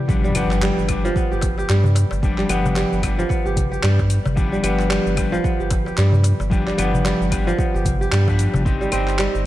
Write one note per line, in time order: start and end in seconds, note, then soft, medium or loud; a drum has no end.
0.00 0.14 E3 medium
0.00 0.14 G3 medium
0.00 0.35 B3 medium
0.00 0.85 G4 medium
0.08 0.32 F3 medium
0.08 0.33 G3 medium
0.08 0.33 B3 medium
0.08 0.33 D4 medium
0.08 0.33 G4 medium
0.08 kick loud
0.08 impact medium
0.08 cabasa soft
0.24 0.62 G3 medium
0.24 cabasa soft
0.35 0.71 G1 loud
0.35 0.86 F3 medium
0.35 0.86 G3 medium
0.35 1.16 B3 loud
0.35 0.87 B3 medium
0.35 0.87 D4 medium
0.35 0.87 G4 medium
0.35 closed hi-hat medium
0.35 cabasa medium
0.35 claves medium
0.50 clap soft
0.50 darbuka tek soft
0.50 cabasa soft
0.62 1.68 G3 medium
0.62 clap loud
0.62 cabasa soft
0.77 1.11 G1 medium
0.77 cabasa soft
0.88 1.08 F3 medium
0.88 1.08 G3 medium
0.88 1.08 B3 medium
0.88 1.09 D4 medium
0.88 1.09 G4 loud
0.88 kick medium
0.88 closed hi-hat medium
0.88 darbuka tek medium
0.88 cabasa medium
0.88 claves medium
1.05 3.17 F3 loud
1.05 cabasa soft
1.16 2.49 B3 medium
1.16 kick loud
1.16 cabasa soft
1.31 1.64 G1 medium
1.31 1.58 G4 medium
1.31 cabasa soft
1.41 kick loud
1.41 closed hi-hat medium
1.41 darbuka tek medium
1.41 cabasa medium
1.58 3.00 G4 medium
1.58 darbuka ka medium
1.58 cabasa soft
1.69 2.05 G2 loud
1.69 2.37 G3 medium
1.69 clap loud
1.69 cabasa soft
1.84 darbuka dum medium
1.84 cabasa soft
1.95 closed hi-hat medium
1.95 darbuka tek medium
1.95 cabasa medium
2.11 2.45 G1 medium
2.11 darbuka tek medium
2.11 cabasa soft
2.23 2.47 F3 medium
2.23 2.47 G3 medium
2.23 2.47 B3 medium
2.23 2.48 D4 medium
2.23 2.48 G4 medium
2.23 kick loud
2.23 cabasa soft
2.38 2.75 G3 medium
2.38 clap soft
2.38 cabasa soft
2.49 2.85 G1 loud
2.49 3.00 F3 medium
2.49 3.01 G3 medium
2.49 3.29 B3 loud
2.49 3.01 B3 medium
2.49 3.01 D4 medium
2.49 3.01 G4 medium
2.49 closed hi-hat medium
2.49 cabasa medium
2.49 claves medium
2.65 darbuka ka soft
2.65 darbuka dum medium
2.65 cabasa soft
2.76 3.82 G3 medium
2.76 clap loud
2.76 cabasa soft
2.92 3.25 G1 medium
2.92 cabasa soft
3.02 3.22 F3 medium
3.02 3.22 G3 medium
3.02 3.22 B3 medium
3.02 3.23 D4 medium
3.02 3.23 G4 medium
3.02 kick medium
3.02 closed hi-hat medium
3.02 darbuka tek medium
3.02 cabasa medium
3.02 claves medium
3.19 5.31 F3 loud
3.19 cabasa soft
3.29 4.63 B3 medium
3.29 kick loud
3.29 darbuka ka soft
3.29 cabasa soft
3.46 3.79 G1 medium
3.46 3.71 G4 medium
3.46 cabasa soft
3.56 kick loud
3.56 closed hi-hat medium
3.56 darbuka dum medium
3.56 cabasa medium
3.72 5.13 G4 medium
3.72 cabasa soft
3.83 4.19 G2 loud
3.83 4.51 G3 medium
3.83 clap loud
3.83 cabasa soft
3.99 kick medium
3.99 darbuka tek medium
3.99 cabasa soft
4.10 closed hi-hat medium
4.10 cabasa medium
4.26 4.59 G1 medium
4.26 darbuka tek medium
4.26 darbuka dum medium
4.26 cabasa soft
4.36 4.61 F3 medium
4.36 4.61 G3 medium
4.36 4.61 B3 medium
4.36 4.61 D4 medium
4.36 4.62 G4 medium
4.36 kick loud
4.36 cabasa medium
4.52 4.89 G3 medium
4.52 cabasa soft
4.62 4.99 G1 loud
4.62 5.14 F3 medium
4.62 5.14 G3 medium
4.62 5.14 B3 medium
4.62 5.44 B3 loud
4.62 5.15 D4 medium
4.62 5.15 G4 medium
4.62 closed hi-hat medium
4.62 cabasa medium
4.62 claves medium
4.79 clap soft
4.79 darbuka tek soft
4.79 cabasa soft
4.90 5.97 G3 medium
4.90 clap loud
4.90 cabasa soft
5.06 5.39 G1 medium
5.06 cabasa soft
5.16 5.36 F3 loud
5.16 5.36 G3 medium
5.16 5.36 B3 medium
5.16 5.36 D4 medium
5.16 5.37 G4 medium
5.16 kick medium
5.16 closed hi-hat medium
5.16 darbuka tek medium
5.16 cabasa medium
5.16 claves medium
5.32 7.46 F3 loud
5.32 cabasa soft
5.44 6.78 B3 medium
5.44 kick loud
5.44 cabasa soft
5.60 5.93 G1 medium
5.60 5.86 G4 medium
5.60 cabasa soft
5.70 kick loud
5.70 closed hi-hat medium
5.70 darbuka tek medium
5.70 cabasa medium
5.86 7.28 G4 medium
5.86 darbuka ka medium
5.86 cabasa soft
5.97 6.33 G2 loud
5.97 6.66 G3 medium
5.97 clap loud
5.97 cabasa soft
6.12 darbuka dum medium
6.12 cabasa soft
6.24 closed hi-hat medium
6.24 darbuka tek medium
6.24 cabasa medium
6.40 6.73 G1 medium
6.40 darbuka tek medium
6.40 cabasa soft
6.50 6.75 F3 medium
6.50 6.75 G3 medium
6.50 6.75 B3 medium
6.50 6.76 D4 medium
6.50 6.76 G4 loud
6.50 kick loud
6.50 cabasa soft
6.67 7.03 G3 medium
6.67 clap soft
6.67 cabasa soft
6.77 7.14 G1 loud
6.77 7.29 F3 medium
6.77 7.29 G3 medium
6.77 7.58 B3 loud
6.77 7.29 B3 medium
6.77 7.30 D4 medium
6.77 7.30 G4 medium
6.77 closed hi-hat medium
6.77 cabasa medium
6.77 claves medium
6.94 darbuka ka soft
6.94 darbuka dum medium
6.94 cabasa soft
7.05 8.11 G3 medium
7.05 clap loud
7.05 cabasa soft
7.21 7.54 G1 medium
7.21 cabasa soft
7.30 7.50 F3 medium
7.30 7.50 G3 medium
7.30 7.51 B3 medium
7.30 7.51 D4 medium
7.30 7.51 G4 loud
7.30 kick medium
7.30 closed hi-hat medium
7.30 darbuka tek medium
7.30 cabasa medium
7.30 claves medium
7.47 8.71 F3 loud
7.47 cabasa soft
7.58 8.98 B3 medium
7.58 kick loud
7.58 darbuka ka soft
7.58 cabasa soft
7.74 8.08 G1 medium
7.74 8.01 G4 medium
7.74 cabasa soft
7.85 kick loud
7.85 closed hi-hat medium
7.85 darbuka dum medium
7.85 cabasa medium
8.01 9.42 G4 medium
8.01 cabasa soft
8.12 8.48 G2 loud
8.12 8.71 G3 medium
8.12 clap loud
8.12 cabasa soft
8.27 8.63 F3 medium
8.27 8.63 G3 medium
8.27 8.63 B3 medium
8.27 8.64 D4 medium
8.27 8.64 G4 loud
8.27 kick medium
8.27 darbuka tek medium
8.27 cabasa soft
8.39 closed hi-hat medium
8.39 cabasa medium
8.54 8.88 G1 medium
8.54 darbuka tek medium
8.54 darbuka dum loud
8.54 cabasa soft
8.65 8.90 C4 medium
8.65 8.90 D#4 medium
8.65 8.91 G4 loud
8.65 kick loud
8.65 cabasa soft
8.81 9.18 G3 medium
8.81 cabasa soft
8.92 9.28 G1 loud
8.92 9.46 C4 loud
8.92 9.43 C4 medium
8.92 9.44 D#4 medium
8.92 9.44 G4 medium
8.92 closed hi-hat medium
8.92 cabasa medium
8.92 claves medium
9.07 clap soft
9.07 darbuka tek soft
9.07 cabasa soft
9.19 9.46 G3 medium
9.19 clap medium
9.19 cabasa soft
9.35 9.46 G1 medium
9.35 cabasa soft